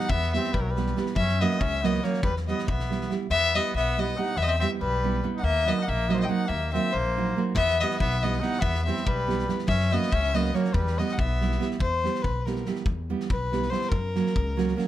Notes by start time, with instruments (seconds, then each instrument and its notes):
Already playing: trumpet D#4, fiddle F#5
0.09 upright bass E2, trumpet B3, fiddle E5, kick
0.22 snare
0.33 nylon-string guitar G3 B3 E4 G4, trumpet C4, fiddle E5, snare
0.44 snare
0.54 upright bass B1, trumpet G3, fiddle B4, kick
0.60 trumpet F#3, fiddle A#4
0.70 trumpet G3, fiddle B4
0.76 nylon-string guitar G3 B3 E4 G4, snare
0.86 snare
0.96 nylon-string guitar G3 B3 E4 G4, snare
1.06 snare
1.16 upright bass F#2, trumpet C#4, fiddle E5, kick
1.28 snare
1.40 nylon-string guitar F#3 A#3 C#4 F#4, trumpet B3, fiddle D#5, snare
1.51 snare
1.59 upright bass C#2, trumpet C#4, fiddle E5, kick
1.82 nylon-string guitar F#3 A#3 C#4 F#4, trumpet B3, fiddle D#5, snare
1.94 snare
2.03 nylon-string guitar F#3 A#3 C#4 F#4, trumpet A#3, fiddle C#5, snare
2.13 snare
2.23 upright bass E2, trumpet G3, fiddle B4, kick
2.36 snare
2.48 nylon-string guitar G3 B3 E4 G4, trumpet B3, fiddle D#5, snare
2.58 snare
2.67 upright bass B1, trumpet B3, fiddle E5, kick
2.80 snare
2.90 nylon-string guitar G3 B3 E4 G4, snare
3.01 snare
3.10 nylon-string guitar G3 B3 E4 G4, snare
3.30 upright bass E2, trumpet B3, fiddle E5
3.54 nylon-string guitar G3 B3 E4 G4, trumpet B3, fiddle D#5
3.74 upright bass B1, trumpet B3, fiddle E5
3.97 nylon-string guitar G3 B3 E4 G4, trumpet B3, fiddle D#5
4.18 nylon-string guitar G3 B3 E4 G4, trumpet D#4, fiddle F#5
4.37 upright bass E2, trumpet B3, fiddle E5
4.42 trumpet B3, fiddle D#5
4.47 trumpet C4, fiddle E5
4.58 nylon-string guitar G3 B3, trumpet C4, fiddle E5
4.62 nylon-string guitar E4 G4
4.80 upright bass B1, trumpet G3, fiddle B4
5.04 nylon-string guitar G3 B3 E4 G4
5.24 nylon-string guitar G3 B3 E4 G4
5.36 trumpet D#4, fiddle F#5
5.43 upright bass D#2, trumpet A#3, fiddle E5
5.66 nylon-string guitar F#3 A#3 D#4 F#4, trumpet B3, fiddle D#5
5.80 trumpet D#4, fiddle F#5
5.85 upright bass A#1, trumpet A#3, fiddle E5
6.08 nylon-string guitar F#3 A#3 D#4 F#4, trumpet A#3 B3, fiddle D#5
6.14 fiddle C5
6.19 trumpet B3, fiddle D#5
6.23 trumpet E4, fiddle G5
6.27 nylon-string guitar F#3 A#3 D#4 F#4, trumpet D#4, fiddle F#5
6.46 upright bass D#2, trumpet A#3, fiddle E5
6.73 nylon-string guitar F#3 A#3 D#4 F#4, trumpet C4, fiddle E5
6.92 upright bass A#1, trumpet A#3, fiddle C5
7.16 nylon-string guitar F#3 A#3 D#4 F#4
7.36 nylon-string guitar F#3 A#3 D#4 F#4
7.55 upright bass E2, trumpet B3, fiddle E5, kick
7.68 snare
7.80 nylon-string guitar G3 B3 E4 G4, trumpet B3, fiddle D#5, snare
7.90 snare
8.00 upright bass B1, trumpet B3, fiddle E5, kick
8.20 nylon-string guitar G3 B3, trumpet B3, fiddle D#5, snare
8.25 nylon-string guitar E4 G4
8.32 snare
8.41 nylon-string guitar G3 B3 E4 G4, trumpet D#4, fiddle F#5, snare
8.52 snare
8.60 upright bass E2, trumpet B3, fiddle E5, kick
8.74 snare
8.85 nylon-string guitar G3 B3 E4 G4, trumpet C4, fiddle E5, snare
8.97 snare
9.06 upright bass B1, trumpet G3, fiddle B4, kick
9.27 nylon-string guitar G3 B3 E4 G4, snare
9.39 snare
9.48 nylon-string guitar G3 B3 E4 G4, snare
9.58 snare
9.68 upright bass F#2, trumpet C#4, fiddle E5, kick
9.80 snare
9.92 nylon-string guitar F#3 A#3 C#4 F#4, trumpet B3, fiddle D#5, snare
10.02 snare
10.12 upright bass C#2, trumpet C#4, fiddle E5, kick
10.33 nylon-string guitar F#3 A#3 C#4 F#4, trumpet B3, fiddle D#5, snare
10.44 snare
10.53 nylon-string guitar F#3 A#3 C#4 F#4, trumpet A#3, fiddle C#5, snare
10.64 snare
10.74 upright bass E2, trumpet G3, fiddle B4, kick
10.87 snare
10.98 nylon-string guitar G3 B3 E4 G4, trumpet B3, fiddle D#5, snare
11.09 snare
11.13 trumpet D#4, fiddle F#5
11.18 upright bass B1, trumpet B3, fiddle E5, kick
11.41 nylon-string guitar G3 B3 E4 G4, snare
11.51 snare
11.59 nylon-string guitar G3 B3 E4 G4, snare
11.71 snare
11.79 upright bass E2, fiddle C5, kick
12.04 nylon-string guitar G3 B3 E4 G4, snare
12.15 snare
12.22 upright bass B1, fiddle B4, kick
12.45 nylon-string guitar G3 B3 E4 G4, fiddle A#4, snare
12.56 snare
12.66 nylon-string guitar G3 B3 E4 G4, snare
12.75 snare
12.86 upright bass E2, kick
13.10 nylon-string guitar G3 B3 E4 G4
13.20 snare
13.30 upright bass B1, fiddle B4, kick
13.52 nylon-string guitar G3 B3 E4 G4, snare
13.62 snare
13.70 nylon-string guitar G3 B3 E4 G4, fiddle C5, snare
13.82 snare
13.88 upright bass F#2, fiddle A#4, kick
14.16 nylon-string guitar F#3 A#3 C#4 F#4, snare
14.26 snare
14.36 upright bass C#2, kick
14.57 nylon-string guitar F#3 A#3 C#4 F#4, snare
14.68 snare
14.76 nylon-string guitar F#3 A#3 C#4 F#4, snare